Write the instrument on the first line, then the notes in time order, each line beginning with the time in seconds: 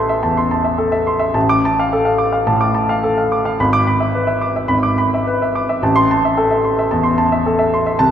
grand piano
Already playing: A1 A4 E5 A5 C6
0.09 E5
0.23 E2 A5
0.37 C6
0.51 A5
0.64 E5
0.78 A4
0.92 E5
1.07 C6
1.19 E5
1.34 A1 A5
1.49 D6
1.65 A5
1.79 F5
1.93 A4
2.05 F5
2.18 D6
2.32 F5
2.47 A2 A5
2.61 D6
2.75 A5
2.89 F5
3.03 A4
3.18 F5
3.32 D6
3.45 F5
3.60 G#1 B5
3.73 D6
3.87 B5
4.00 E5
4.15 B4
4.27 E5
4.41 D6
4.56 E5
4.68 G#1 B5
4.83 D6
4.98 B5
5.14 E5
5.27 B4
5.42 E5
5.55 D6
5.69 E5
5.82 A1 A5
5.96 C6
6.11 A5
6.25 E5
6.37 A4
6.51 E5
6.64 C6
6.79 E5
6.91 E2 A5
7.04 C6
7.18 A5
7.32 E5
7.46 A4
7.59 E5
7.74 C6
7.86 E5
7.99 C2 A5